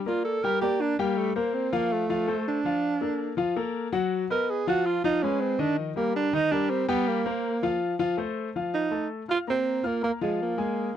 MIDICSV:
0, 0, Header, 1, 3, 480
1, 0, Start_track
1, 0, Key_signature, -2, "major"
1, 0, Tempo, 368777
1, 1524, Time_signature, 4, 2, 24, 8
1, 14272, End_track
2, 0, Start_track
2, 0, Title_t, "Grand piano"
2, 0, Program_c, 0, 0
2, 80, Note_on_c, 0, 58, 74
2, 87, Note_on_c, 0, 70, 69
2, 90, Note_on_c, 0, 74, 63
2, 475, Note_off_c, 0, 58, 0
2, 480, Note_off_c, 0, 70, 0
2, 482, Note_off_c, 0, 74, 0
2, 570, Note_on_c, 0, 55, 85
2, 571, Note_on_c, 0, 67, 84
2, 581, Note_on_c, 0, 79, 81
2, 764, Note_off_c, 0, 55, 0
2, 765, Note_off_c, 0, 67, 0
2, 771, Note_off_c, 0, 79, 0
2, 806, Note_on_c, 0, 58, 84
2, 807, Note_on_c, 0, 70, 77
2, 817, Note_on_c, 0, 74, 84
2, 1199, Note_off_c, 0, 58, 0
2, 1199, Note_off_c, 0, 70, 0
2, 1205, Note_off_c, 0, 74, 0
2, 1289, Note_on_c, 0, 55, 97
2, 1290, Note_on_c, 0, 67, 94
2, 1296, Note_on_c, 0, 79, 93
2, 1680, Note_off_c, 0, 55, 0
2, 1680, Note_off_c, 0, 67, 0
2, 1684, Note_off_c, 0, 79, 0
2, 1767, Note_on_c, 0, 70, 73
2, 1769, Note_on_c, 0, 58, 81
2, 1769, Note_on_c, 0, 72, 74
2, 2159, Note_off_c, 0, 70, 0
2, 2160, Note_off_c, 0, 58, 0
2, 2160, Note_off_c, 0, 72, 0
2, 2246, Note_on_c, 0, 53, 87
2, 2246, Note_on_c, 0, 65, 93
2, 2251, Note_on_c, 0, 77, 101
2, 2638, Note_off_c, 0, 53, 0
2, 2638, Note_off_c, 0, 65, 0
2, 2641, Note_off_c, 0, 77, 0
2, 2725, Note_on_c, 0, 53, 84
2, 2732, Note_on_c, 0, 65, 83
2, 2734, Note_on_c, 0, 77, 93
2, 2921, Note_off_c, 0, 53, 0
2, 2925, Note_off_c, 0, 65, 0
2, 2926, Note_off_c, 0, 77, 0
2, 2962, Note_on_c, 0, 57, 73
2, 2967, Note_on_c, 0, 69, 75
2, 2972, Note_on_c, 0, 72, 73
2, 3356, Note_off_c, 0, 57, 0
2, 3358, Note_off_c, 0, 69, 0
2, 3361, Note_off_c, 0, 72, 0
2, 3451, Note_on_c, 0, 53, 76
2, 3455, Note_on_c, 0, 65, 78
2, 3460, Note_on_c, 0, 77, 84
2, 3840, Note_off_c, 0, 53, 0
2, 3843, Note_off_c, 0, 65, 0
2, 3846, Note_off_c, 0, 77, 0
2, 3917, Note_on_c, 0, 58, 68
2, 3924, Note_on_c, 0, 69, 62
2, 3928, Note_on_c, 0, 70, 68
2, 4312, Note_off_c, 0, 58, 0
2, 4316, Note_off_c, 0, 69, 0
2, 4318, Note_off_c, 0, 70, 0
2, 4385, Note_on_c, 0, 53, 91
2, 4395, Note_on_c, 0, 65, 94
2, 4398, Note_on_c, 0, 77, 85
2, 4588, Note_off_c, 0, 53, 0
2, 4594, Note_off_c, 0, 65, 0
2, 4596, Note_off_c, 0, 77, 0
2, 4639, Note_on_c, 0, 58, 88
2, 4640, Note_on_c, 0, 69, 74
2, 4643, Note_on_c, 0, 70, 84
2, 5033, Note_off_c, 0, 58, 0
2, 5033, Note_off_c, 0, 69, 0
2, 5035, Note_off_c, 0, 70, 0
2, 5108, Note_on_c, 0, 54, 101
2, 5110, Note_on_c, 0, 66, 90
2, 5113, Note_on_c, 0, 78, 100
2, 5506, Note_off_c, 0, 54, 0
2, 5507, Note_off_c, 0, 66, 0
2, 5509, Note_off_c, 0, 78, 0
2, 5600, Note_on_c, 0, 59, 81
2, 5601, Note_on_c, 0, 71, 80
2, 5603, Note_on_c, 0, 75, 73
2, 5993, Note_off_c, 0, 59, 0
2, 5994, Note_off_c, 0, 71, 0
2, 5995, Note_off_c, 0, 75, 0
2, 6083, Note_on_c, 0, 53, 99
2, 6089, Note_on_c, 0, 65, 96
2, 6089, Note_on_c, 0, 77, 96
2, 6475, Note_off_c, 0, 53, 0
2, 6478, Note_off_c, 0, 77, 0
2, 6479, Note_off_c, 0, 65, 0
2, 6561, Note_on_c, 0, 53, 95
2, 6563, Note_on_c, 0, 65, 98
2, 6566, Note_on_c, 0, 77, 100
2, 6757, Note_off_c, 0, 53, 0
2, 6758, Note_off_c, 0, 65, 0
2, 6759, Note_off_c, 0, 77, 0
2, 6809, Note_on_c, 0, 56, 85
2, 6813, Note_on_c, 0, 68, 84
2, 6816, Note_on_c, 0, 71, 80
2, 7198, Note_off_c, 0, 56, 0
2, 7201, Note_off_c, 0, 68, 0
2, 7202, Note_off_c, 0, 71, 0
2, 7274, Note_on_c, 0, 51, 83
2, 7275, Note_on_c, 0, 63, 78
2, 7276, Note_on_c, 0, 75, 86
2, 7669, Note_off_c, 0, 51, 0
2, 7669, Note_off_c, 0, 63, 0
2, 7670, Note_off_c, 0, 75, 0
2, 7758, Note_on_c, 0, 55, 73
2, 7769, Note_on_c, 0, 67, 68
2, 7771, Note_on_c, 0, 70, 71
2, 8151, Note_off_c, 0, 55, 0
2, 8158, Note_off_c, 0, 67, 0
2, 8159, Note_off_c, 0, 70, 0
2, 8239, Note_on_c, 0, 51, 85
2, 8240, Note_on_c, 0, 63, 90
2, 8244, Note_on_c, 0, 75, 86
2, 8435, Note_off_c, 0, 51, 0
2, 8436, Note_off_c, 0, 63, 0
2, 8438, Note_off_c, 0, 75, 0
2, 8478, Note_on_c, 0, 55, 86
2, 8483, Note_on_c, 0, 67, 88
2, 8484, Note_on_c, 0, 70, 80
2, 8871, Note_off_c, 0, 55, 0
2, 8874, Note_off_c, 0, 67, 0
2, 8875, Note_off_c, 0, 70, 0
2, 8962, Note_on_c, 0, 55, 105
2, 8962, Note_on_c, 0, 67, 103
2, 8964, Note_on_c, 0, 79, 100
2, 9353, Note_off_c, 0, 55, 0
2, 9353, Note_off_c, 0, 67, 0
2, 9355, Note_off_c, 0, 79, 0
2, 9446, Note_on_c, 0, 58, 89
2, 9446, Note_on_c, 0, 72, 73
2, 9448, Note_on_c, 0, 70, 84
2, 9836, Note_off_c, 0, 58, 0
2, 9836, Note_off_c, 0, 72, 0
2, 9837, Note_off_c, 0, 70, 0
2, 9927, Note_on_c, 0, 53, 94
2, 9933, Note_on_c, 0, 65, 100
2, 9935, Note_on_c, 0, 77, 102
2, 10316, Note_off_c, 0, 53, 0
2, 10320, Note_off_c, 0, 65, 0
2, 10321, Note_off_c, 0, 77, 0
2, 10403, Note_on_c, 0, 53, 103
2, 10405, Note_on_c, 0, 65, 101
2, 10410, Note_on_c, 0, 77, 99
2, 10597, Note_off_c, 0, 53, 0
2, 10598, Note_off_c, 0, 65, 0
2, 10602, Note_off_c, 0, 77, 0
2, 10639, Note_on_c, 0, 57, 75
2, 10643, Note_on_c, 0, 69, 72
2, 10653, Note_on_c, 0, 72, 78
2, 11032, Note_off_c, 0, 57, 0
2, 11035, Note_off_c, 0, 69, 0
2, 11040, Note_off_c, 0, 72, 0
2, 11137, Note_on_c, 0, 53, 72
2, 11140, Note_on_c, 0, 65, 71
2, 11145, Note_on_c, 0, 77, 80
2, 11523, Note_off_c, 0, 53, 0
2, 11525, Note_off_c, 0, 65, 0
2, 11528, Note_off_c, 0, 77, 0
2, 11595, Note_on_c, 0, 57, 60
2, 11602, Note_on_c, 0, 69, 61
2, 11605, Note_on_c, 0, 81, 57
2, 11991, Note_off_c, 0, 57, 0
2, 11995, Note_off_c, 0, 69, 0
2, 11997, Note_off_c, 0, 81, 0
2, 12082, Note_on_c, 0, 65, 60
2, 12091, Note_on_c, 0, 77, 70
2, 12093, Note_on_c, 0, 89, 66
2, 12278, Note_off_c, 0, 65, 0
2, 12283, Note_off_c, 0, 77, 0
2, 12284, Note_off_c, 0, 89, 0
2, 12330, Note_on_c, 0, 58, 75
2, 12335, Note_on_c, 0, 70, 73
2, 12343, Note_on_c, 0, 82, 69
2, 12720, Note_off_c, 0, 58, 0
2, 12723, Note_off_c, 0, 70, 0
2, 12728, Note_off_c, 0, 82, 0
2, 12798, Note_on_c, 0, 65, 75
2, 12808, Note_on_c, 0, 89, 76
2, 12811, Note_on_c, 0, 77, 70
2, 12996, Note_off_c, 0, 65, 0
2, 13002, Note_off_c, 0, 89, 0
2, 13004, Note_off_c, 0, 77, 0
2, 13049, Note_on_c, 0, 58, 67
2, 13051, Note_on_c, 0, 70, 62
2, 13055, Note_on_c, 0, 82, 63
2, 13243, Note_off_c, 0, 58, 0
2, 13244, Note_off_c, 0, 70, 0
2, 13246, Note_off_c, 0, 82, 0
2, 13292, Note_on_c, 0, 53, 83
2, 13295, Note_on_c, 0, 65, 78
2, 13301, Note_on_c, 0, 77, 71
2, 13682, Note_off_c, 0, 53, 0
2, 13684, Note_off_c, 0, 65, 0
2, 13687, Note_off_c, 0, 77, 0
2, 13766, Note_on_c, 0, 56, 79
2, 13771, Note_on_c, 0, 68, 70
2, 13774, Note_on_c, 0, 80, 75
2, 14159, Note_off_c, 0, 56, 0
2, 14162, Note_off_c, 0, 68, 0
2, 14164, Note_off_c, 0, 80, 0
2, 14272, End_track
3, 0, Start_track
3, 0, Title_t, "Tenor saxophone"
3, 0, Program_c, 1, 66
3, 97, Note_on_c, 1, 65, 91
3, 312, Note_off_c, 1, 65, 0
3, 320, Note_on_c, 1, 69, 94
3, 568, Note_on_c, 1, 70, 105
3, 588, Note_off_c, 1, 69, 0
3, 789, Note_off_c, 1, 70, 0
3, 797, Note_on_c, 1, 67, 103
3, 1051, Note_on_c, 1, 62, 97
3, 1071, Note_off_c, 1, 67, 0
3, 1282, Note_off_c, 1, 62, 0
3, 1290, Note_on_c, 1, 58, 80
3, 1531, Note_on_c, 1, 57, 86
3, 1550, Note_off_c, 1, 58, 0
3, 1758, Note_off_c, 1, 57, 0
3, 1765, Note_on_c, 1, 58, 76
3, 2002, Note_on_c, 1, 60, 84
3, 2021, Note_off_c, 1, 58, 0
3, 2252, Note_on_c, 1, 58, 92
3, 2271, Note_off_c, 1, 60, 0
3, 2508, Note_on_c, 1, 57, 85
3, 2528, Note_off_c, 1, 58, 0
3, 3215, Note_off_c, 1, 57, 0
3, 3227, Note_on_c, 1, 62, 92
3, 4361, Note_off_c, 1, 62, 0
3, 5612, Note_on_c, 1, 70, 97
3, 5862, Note_on_c, 1, 68, 84
3, 5881, Note_off_c, 1, 70, 0
3, 6090, Note_off_c, 1, 68, 0
3, 6104, Note_on_c, 1, 66, 108
3, 6325, Note_on_c, 1, 65, 93
3, 6344, Note_off_c, 1, 66, 0
3, 6557, Note_off_c, 1, 65, 0
3, 6565, Note_on_c, 1, 63, 104
3, 6803, Note_on_c, 1, 61, 99
3, 6823, Note_off_c, 1, 63, 0
3, 7038, Note_on_c, 1, 60, 89
3, 7058, Note_off_c, 1, 61, 0
3, 7292, Note_on_c, 1, 62, 99
3, 7311, Note_off_c, 1, 60, 0
3, 7525, Note_off_c, 1, 62, 0
3, 7535, Note_on_c, 1, 53, 50
3, 7743, Note_off_c, 1, 53, 0
3, 7766, Note_on_c, 1, 58, 87
3, 8002, Note_off_c, 1, 58, 0
3, 8018, Note_on_c, 1, 62, 104
3, 8255, Note_on_c, 1, 63, 121
3, 8275, Note_off_c, 1, 62, 0
3, 8486, Note_on_c, 1, 62, 106
3, 8506, Note_off_c, 1, 63, 0
3, 8722, Note_on_c, 1, 60, 97
3, 8741, Note_off_c, 1, 62, 0
3, 8953, Note_off_c, 1, 60, 0
3, 8961, Note_on_c, 1, 59, 95
3, 9214, Note_on_c, 1, 58, 86
3, 9233, Note_off_c, 1, 59, 0
3, 10165, Note_off_c, 1, 58, 0
3, 11377, Note_on_c, 1, 63, 88
3, 11815, Note_off_c, 1, 63, 0
3, 12112, Note_on_c, 1, 65, 104
3, 12213, Note_off_c, 1, 65, 0
3, 12363, Note_on_c, 1, 60, 108
3, 12837, Note_on_c, 1, 58, 92
3, 12856, Note_off_c, 1, 60, 0
3, 13059, Note_off_c, 1, 58, 0
3, 13066, Note_on_c, 1, 58, 89
3, 13168, Note_off_c, 1, 58, 0
3, 13309, Note_on_c, 1, 56, 78
3, 13520, Note_off_c, 1, 56, 0
3, 13559, Note_on_c, 1, 58, 77
3, 14272, Note_off_c, 1, 58, 0
3, 14272, End_track
0, 0, End_of_file